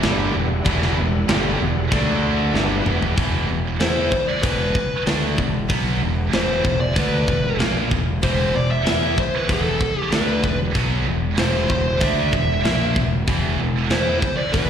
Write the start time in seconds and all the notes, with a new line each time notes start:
Already playing: G3 E4 F#5
0.03 G1 G2 D3 G3, snare, crash
0.34 E1 E2 B2
0.65 E1 E2 B2 E3, kick, crash
0.82 snare
0.97 E1 E2 B2
1.28 G1 G2 D3 G3, snare, crash
1.59 E1 E2 B2
1.91 D2 D3 A3 D4 A4 E5, kick, crash
2.53 G1 G2 D3 E3 G3 B3 F#4, snare
2.85 E1 E2 B2 E3, mid tom
3.02 floor tom
3.16 E1 E2 B2 E3, kick, open hi-hat
3.48 E1 E2 B2
3.79 E2 E3 B3 E4 C5, snare, open hi-hat
4.11 C5, muted overdriven electric guitar stroke, muted distorted electric guitar stroke, muted fingered electric bass stroke, kick
4.28 D5
4.43 E1 E2 B2 E3 B4, kick, open hi-hat
4.75 muted overdriven electric guitar stroke, muted distorted electric guitar stroke, kick
5.06 D2 D3 A3 D4, snare, open hi-hat
5.38 E1 E2 B2, kick
5.69 B1 B2 F#3 B3, kick, open hi-hat
6.02 E1 E2 B2
6.32 E1 E2 B2 E3 C5, snare, open hi-hat
6.64 E1 E2 B2 C5, kick
6.80 D5
6.96 D2 D3 A3 D4 B4, kick, open hi-hat
7.27 E1 E2 B2, kick
7.59 A#1 A#2 F3 A#3, snare, open hi-hat
7.90 E1 E2 B2, kick
8.22 E1 E2 B2 E3 C5, kick, open hi-hat
8.54 E1 E2 B2 D5
8.71 E5
8.85 E2 E3 B3 E4 E5, snare, open hi-hat
9.17 C5, muted overdriven electric guitar stroke, muted fingered electric bass stroke, muted distorted electric guitar stroke, kick
9.36 B4
9.48 E1 E2 B2 E3, kick, open hi-hat
9.52 A4
9.80 muted overdriven electric guitar stroke, muted fingered electric bass stroke, muted distorted electric guitar stroke, kick
10.00 G4
10.11 D2 D3 A3 D4 B4, snare, open hi-hat
10.43 E1 E2 B2, kick
10.74 B1 B2 F#3 B3, kick, open hi-hat
11.06 E1 E2 B2
11.37 E1 E2 B2 E3 C5, snare, open hi-hat
11.70 E1 E2 B2 C5, kick
12.00 D2 D3 A3 D4 E5, kick, open hi-hat
12.33 E1 E2 B2, kick
12.64 A#1 A#2 F3 A#3, snare, open hi-hat
12.96 E1 E2 B2, kick
13.27 E1 E2 B2 E3, kick, open hi-hat
13.59 E1 E2 B2
13.90 E2 E3 B3 E4 C5, snare, open hi-hat
14.20 C5, muted distorted electric guitar stroke, muted overdriven electric guitar stroke, muted fingered electric bass stroke, kick
14.37 D5
14.52 E1 E2 B2 E3 B4, kick, open hi-hat